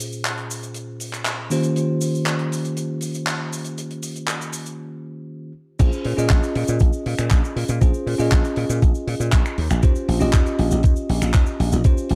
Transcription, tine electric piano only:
0.00 1.48 A#2 medium
0.00 1.48 C#4 medium
0.00 1.48 F4 medium
0.00 1.49 G#4 medium
0.00 1.49 C5 medium
1.50 5.51 D#3 medium
1.50 5.51 A#3 medium
1.50 5.51 C#4 medium
1.50 5.52 F4 medium
1.50 5.52 G4 medium
1.50 5.52 C5 medium
5.79 6.14 C#4 medium
5.79 6.14 F4 medium
5.79 6.15 G#4 medium
5.79 6.15 C5 medium
6.17 7.78 C#4 medium
6.17 7.78 F4 medium
6.17 7.79 G#4 medium
6.17 7.79 D#5 loud
7.81 8.16 C#4 medium
7.81 8.16 F4 medium
7.81 8.17 G#4 medium
7.81 8.17 C5 medium
8.18 9.56 C#4 medium
8.18 9.56 F4 medium
8.18 9.57 G#4 medium
8.18 9.57 D#5 loud
9.83 10.18 C#4 medium
9.83 10.18 F4 medium
9.83 10.18 G4 medium
9.83 10.18 C5 medium
10.20 11.81 C#4 medium
10.20 11.82 F4 medium
10.20 11.82 G4 medium
10.20 11.82 D#5 loud
11.85 12.15 C#4 medium
11.85 12.15 F4 medium
11.85 12.15 G4 medium
11.85 12.15 C5 medium

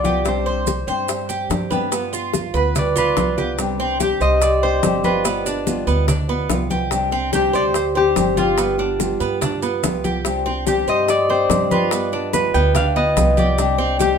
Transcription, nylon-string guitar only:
0.04 0.25 B3 medium
0.04 0.24 F4 medium
0.24 0.65 C3 medium
0.24 0.66 G3 medium
0.24 0.66 C4 medium
0.24 0.66 D4 medium
0.24 0.66 G4 medium
0.66 muted nylon-string guitar stroke medium
0.87 1.07 G3 medium
0.87 1.08 C4 medium
0.87 1.08 D4 medium
0.87 1.08 G4 medium
1.09 1.49 G3 medium
1.09 1.50 C4 medium
1.09 1.50 D4 medium
1.09 1.51 G4 medium
1.50 1.70 G3 soft
1.50 1.71 C4 medium
1.50 1.70 D4 medium
1.50 1.70 G4 medium
1.71 1.90 G3 medium
1.71 1.90 C4 medium
1.71 1.91 D4 medium
1.71 1.91 G4 medium
1.91 2.32 G3 medium
1.91 2.33 B3 medium
1.91 2.34 F4 medium
2.34 muted nylon-string guitar stroke medium
2.54 2.75 B3 medium
2.54 2.74 F4 medium
2.75 3.15 G3 medium
2.75 3.16 B3 medium
2.75 3.17 F4 medium
3.16 3.37 G3 soft
3.16 3.37 B3 medium
3.16 3.36 F4 medium
3.37 3.59 B3 medium
3.37 3.57 F4 medium
3.58 3.78 C3 medium
3.58 3.79 G3 medium
3.58 3.79 C4 medium
3.58 3.79 D4 medium
3.58 3.77 G4 medium
3.79 4.00 C4 soft
3.79 4.00 D4 soft
3.79 3.99 G4 medium
3.99 4.41 C3 medium
3.99 4.41 G3 medium
3.99 4.41 C4 medium
3.99 4.41 D4 medium
3.99 4.42 G4 medium
4.42 muted nylon-string guitar stroke medium
4.62 4.83 C4 soft
4.62 4.83 D4 medium
4.62 4.82 G4 medium
4.83 5.03 C3 medium
4.83 5.04 G3 medium
4.83 5.04 C4 medium
4.83 5.04 D4 medium
4.83 5.02 G4 medium
5.03 5.24 C4 soft
5.03 5.24 D4 soft
5.03 5.24 G4 soft
5.24 5.44 G3 medium
5.24 5.45 B3 medium
5.24 5.44 F4 medium
5.45 5.66 B3 soft
5.45 5.65 F4 medium
5.66 6.06 G3 medium
5.66 6.07 B3 medium
5.66 6.08 F4 medium
6.07 muted nylon-string guitar stroke medium
6.28 6.49 B3 soft
6.28 6.49 F4 medium
6.49 6.69 G3 medium
6.49 6.70 B3 medium
6.49 6.68 F4 medium
6.70 6.91 B3 soft
6.70 6.90 F4 medium
6.91 7.11 C3 medium
6.91 7.12 G3 medium
6.91 7.12 C4 medium
6.91 7.11 D4 medium
6.91 7.10 G4 medium
7.11 7.32 C4 soft
7.11 7.33 D4 medium
7.11 7.32 G4 medium
7.33 7.73 C3 medium
7.33 7.73 G3 medium
7.33 7.73 C4 medium
7.33 7.74 D4 medium
7.33 7.74 G4 medium
7.74 muted nylon-string guitar stroke medium
7.95 8.16 C4 soft
7.95 8.16 D4 medium
7.95 8.15 G4 medium
8.16 8.36 C3 medium
8.16 8.37 G3 medium
8.16 8.37 C4 medium
8.16 8.37 D4 medium
8.16 8.36 G4 medium
8.37 8.57 C4 soft
8.37 8.58 D4 soft
8.37 8.57 G4 medium
8.58 8.78 G3 medium
8.58 8.79 B3 medium
8.58 8.77 F4 medium
8.79 8.99 B3 soft
8.79 8.99 F4 medium
8.99 9.40 G3 medium
8.99 9.41 B3 medium
8.99 9.41 F4 medium
9.41 muted nylon-string guitar stroke medium
9.62 9.83 B3 soft
9.62 9.82 F4 medium
9.83 10.03 G3 medium
9.83 10.04 B3 medium
9.83 10.03 F4 medium
10.04 10.25 B3 soft
10.04 10.24 F4 medium
10.24 10.45 C3 medium
10.24 10.45 G3 medium
10.24 10.45 C4 medium
10.24 10.46 D4 medium
10.24 10.44 G4 medium
10.46 10.66 C4 soft
10.46 10.66 D4 medium
10.46 10.66 G4 medium
10.66 11.07 C3 medium
10.66 11.08 G3 medium
10.66 11.08 C4 medium
10.66 11.08 D4 medium
10.66 11.08 G4 medium
11.08 muted nylon-string guitar stroke medium
11.28 11.49 C4 soft
11.28 11.50 D4 soft
11.28 11.49 G4 medium
11.49 11.69 C3 medium
11.49 11.70 G3 medium
11.49 11.70 C4 medium
11.49 11.70 D4 medium
11.49 11.68 G4 medium
11.70 11.90 C4 soft
11.70 11.91 D4 soft
11.70 11.90 G4 medium
11.91 12.11 G3 medium
11.91 12.12 B3 medium
11.91 12.11 F4 medium
12.12 12.33 B3 soft
12.12 12.32 F4 medium
12.32 12.74 G3 medium
12.32 12.74 B3 medium
12.32 12.75 F4 medium
12.75 muted nylon-string guitar stroke medium
12.96 13.15 B3 soft
12.96 13.16 F4 medium
13.16 13.36 G3 medium
13.16 13.37 B3 medium
13.16 13.36 F4 medium
13.37 13.58 B3 soft
13.37 13.57 F4 medium
13.58 13.78 C3 medium
13.58 13.78 G3 medium
13.58 13.79 C4 medium
13.58 13.78 D4 medium
13.58 13.77 G4 medium
13.78 14.00 C4 soft
13.78 13.99 D4 soft
13.78 13.99 G4 medium
14.00 14.18 C3 medium
14.00 14.18 G3 medium
14.00 14.18 C4 medium
14.00 14.18 D4 medium
14.00 14.18 G4 medium

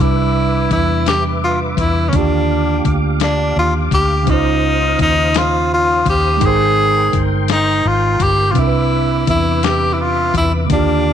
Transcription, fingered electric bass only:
0.00 0.66 C2 medium
0.71 1.74 E2 medium
1.78 2.10 E2 medium
2.14 2.81 D#2 loud
2.86 3.52 D2 medium
3.56 3.88 D#2 medium
3.92 4.24 D2 medium
4.28 4.95 C#2 loud
5.00 6.02 D#2 medium
6.06 6.38 D#2 medium
6.42 7.09 G#1 loud
7.14 7.81 G1 medium
7.85 8.17 G#1 medium
8.20 8.56 G1 medium
8.56 9.23 C2 loud
9.28 10.31 E2 medium
10.34 10.67 E2 medium
10.70 11.13 D#2 loud

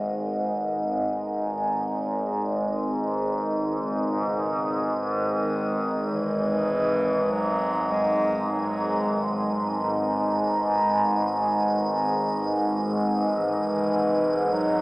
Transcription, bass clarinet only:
0.00 1.31 D#3 loud
3.75 4.86 C#3 medium
4.85 4.94 E3 medium
4.93 6.13 D#3 loud
6.12 7.33 E3 loud
7.31 7.92 F#3 loud
7.91 8.51 G#3 loud
8.52 9.68 F#3 medium
13.34 14.54 E3 medium
14.53 14.81 F#3 loud

